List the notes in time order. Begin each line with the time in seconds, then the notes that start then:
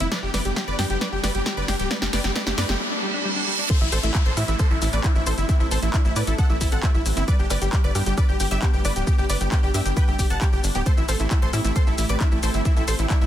Already playing: riser
0.00 G1 C4 E4 E5, closed hi-hat
0.12 D3 G3 B3 B4 D5 D6, kick, snare, closed hi-hat
0.23 G1 D4 G4 G5
0.34 G1 G4 B4 D5 D6, snare, open hi-hat
0.45 G1 G3 G4 G5, closed hi-hat
0.56 G3 G4 G5, kick, snare, closed hi-hat
0.68 G1 D3 B4 D5 D6
0.79 G2 D4 G4 G5, snare, open hi-hat
0.90 G1 G3 G4 G5, closed hi-hat
1.01 G3 B4 D5 D6, kick, snare, closed hi-hat
1.12 G1 D4 G4 G5
1.23 G1 G4 B4 D5 D6, snare, open hi-hat
1.35 G1 G3 G4 G5, closed hi-hat
1.46 G3 G4 G5, kick, snare, closed hi-hat
1.57 G1 D3 B4 D5 D6
1.68 G1 D4 G4 G5, snare, open hi-hat
1.80 D1 G3 G4 G5, closed hi-hat
1.91 G3 A3 B4 D5 D6, kick, snare, closed hi-hat
2.02 G1 D4 G4 G5, snare
2.13 G1 G4 B4 D5 D6, snare, open hi-hat
2.24 G1 G3 G4 G5, snare, closed hi-hat
2.35 G3 B4 D5 D6, kick, snare, closed hi-hat
2.47 G1 D4 G4 G5, snare
2.58 G2 G4 B4 D5 D6, snare, open hi-hat
2.69 G1 G3 G4 G5, snare, closed hi-hat
2.80 G3, reverse cymbal
2.92 D4
3.03 G3
3.14 D4
3.25 G3
3.36 D4
3.48 G3
3.59 D4
3.70 G3 A3 C4 A4 C5 C6, kick, closed hi-hat, crash, downlifter, shaker
3.81 A1 E4 E5, shaker
3.92 A1 A4 C5 C6, cross-stick, open hi-hat, shaker
4.03 A1 A3 E4 E5, closed hi-hat, shaker
4.15 A3 E4 E5, kick, clap, closed hi-hat, shaker
4.26 A1 E3 A4 C5 C6, shaker
4.37 A2 E4 E5, cross-stick, open hi-hat, shaker
4.48 A1 A3 E4 E5, closed hi-hat, shaker
4.59 A4 C5 C6, kick, cross-stick, closed hi-hat, shaker
4.71 A1 E4 A4 E5, shaker
4.82 A1 A2 E4 E5, open hi-hat, shaker
4.93 A1 A3 B4 D5 D6, closed hi-hat, shaker
5.04 D4 E4 E5, kick, clap, closed hi-hat, shaker
5.15 A1 A3 E4 E5, shaker
5.27 A1 E4 A4 C5 C6, open hi-hat, shaker
5.38 G1 E4 E5, closed hi-hat, shaker
5.49 C4 E4 E5, kick, closed hi-hat, shaker
5.60 A1 E4 A4 E5, shaker
5.71 A1 A4 C5 C6, open hi-hat, shaker
5.83 A1 A3 E4 E5, closed hi-hat, shaker
5.94 D4 E4 E5, kick, clap, closed hi-hat, shaker
6.05 A1 A3 E4 E5, shaker
6.16 A2 E4 B4 D5 D6, open hi-hat, shaker
6.27 A1 E4 A4 E5, closed hi-hat, shaker
6.38 B3 A4 F#5 F#6, kick, closed hi-hat, shaker
6.50 A1 A3 E4 E5, shaker
6.61 A1 E4 A4 E5, kick, open hi-hat, shaker
6.72 A1 C4 A4 F#5 F#6, closed hi-hat, shaker
6.83 A3 E4 E5, kick, clap, closed hi-hat, shaker
6.94 A1 E4 E5, shaker
7.06 A1 E4, open hi-hat, shaker
7.17 G1 C4 E4 E5, closed hi-hat, shaker
7.28 G3 B3 D4 B4 D5 D6, kick, closed hi-hat, shaker
7.39 G1 D4 G4 G5, shaker
7.50 G1 G4 B4 D5 D6, cross-stick, open hi-hat, shaker
7.61 G1 G3 G4 G5, closed hi-hat, shaker
7.73 G3 G4 G5, kick, clap, closed hi-hat, shaker
7.84 G1 D3 B4 D5 D6, shaker
7.95 G2 D4 G4 G5, cross-stick, open hi-hat, shaker
8.06 G1 G3 G4 G5, closed hi-hat, shaker
8.18 B4 D5 D6, kick, cross-stick, closed hi-hat, shaker
8.29 G1 G4 G5, shaker
8.40 G1 G2 G4 G5, open hi-hat, shaker
8.51 G1 G3 G4 E5 E6, closed hi-hat, shaker
8.62 B3 G4 G5, kick, clap, closed hi-hat, shaker
8.74 G1 G3 G4 G5, shaker
8.85 G1 D4 B4 D5 D6, open hi-hat, shaker
8.96 D1 G4 G5, closed hi-hat, shaker
9.07 B3 G4 G5, kick, closed hi-hat, shaker
9.18 G1 G4 G5, shaker
9.29 G1 B4 D5 D6, open hi-hat, shaker
9.41 G1 G3 G4 G5, closed hi-hat, shaker
9.52 B3 G4 G5, kick, clap, closed hi-hat, shaker
9.63 G1 G3 G4 G5, shaker
9.74 G2 D4 G4 E5 E6, open hi-hat, shaker
9.85 G1 G4 G5, closed hi-hat, shaker
9.97 A3 B4 G5 G6, kick, closed hi-hat, shaker
10.08 G1 G3 G4 G5, shaker
10.19 G1 G4 G5, kick, open hi-hat, shaker
10.30 G1 B3 F#5 A5 A6, closed hi-hat, shaker
10.41 G3 G4 G5, kick, clap, closed hi-hat, shaker
10.53 G1 G4 G5, shaker
10.64 G1 D4, open hi-hat, shaker
10.75 D1 B3 G4 G5, closed hi-hat, shaker
10.86 A3 C4 G4 A4 C5 C6, kick, closed hi-hat, shaker
10.97 A1 E4 E5, shaker
11.09 A1 A4 C5 C6, cross-stick, open hi-hat, shaker
11.20 A1 A3 E4 E5, closed hi-hat, shaker
11.31 A3 E4 E5, kick, clap, closed hi-hat, shaker
11.42 A1 E3 A4 C5 C6, shaker
11.53 A2 E4 E5, cross-stick, open hi-hat, shaker
11.65 A1 A3 E4 E5, closed hi-hat, shaker
11.76 A4 C5 C6, kick, cross-stick, closed hi-hat, shaker
11.87 A1 E4 A4 E5, shaker
11.98 A1 A2 E4 E5, open hi-hat, shaker
12.09 A1 A3 B4 D5 D6, closed hi-hat, shaker
12.20 D4 E4 E5, kick, clap, closed hi-hat, shaker
12.32 A1 A3 E4 E5, shaker
12.43 A1 E4 A4 C5 C6, open hi-hat, shaker
12.54 G1 E4 E5, closed hi-hat, shaker
12.65 C4 E4 E5, kick, closed hi-hat, shaker
12.77 A1 E4 A4 E5, shaker
12.88 A1 A4 C5 C6, open hi-hat, shaker
12.99 A1 A3 E4 E5, closed hi-hat, shaker
13.10 D4 E4 E5, kick, clap, closed hi-hat, shaker
13.21 A1 A3 E4 E5, shaker